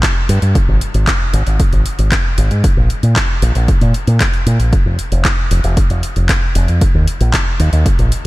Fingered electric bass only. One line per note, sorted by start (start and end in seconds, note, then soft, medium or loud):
0.29 0.40 G2 medium
0.42 0.53 G2 medium
0.68 0.79 G#1 medium
0.94 1.05 G#1 medium
1.33 1.45 G#1 medium
1.46 1.58 G#1 medium
1.73 1.84 G#1 medium
1.99 2.10 G#1 medium
2.38 2.49 G#1 medium
2.51 2.62 G#2 medium
2.77 2.88 A#1 medium
3.03 3.14 A#2 medium
3.42 3.53 A#1 medium
3.55 3.66 A#1 medium
3.81 3.92 A#2 medium
4.07 4.18 A#2 medium
4.46 4.58 A#2 medium
4.59 4.71 A#1 medium
4.85 4.97 F1 medium
5.12 5.23 F1 medium
5.51 5.62 F1 medium
5.64 5.75 F1 medium
5.90 6.01 F1 medium
6.16 6.27 F1 medium
6.55 6.66 F1 medium
6.68 6.79 F2 medium
6.94 7.06 D#2 medium
7.21 7.32 A#1 medium
7.60 7.71 D#2 medium
7.73 7.84 D#2 medium
7.99 8.10 A#1 medium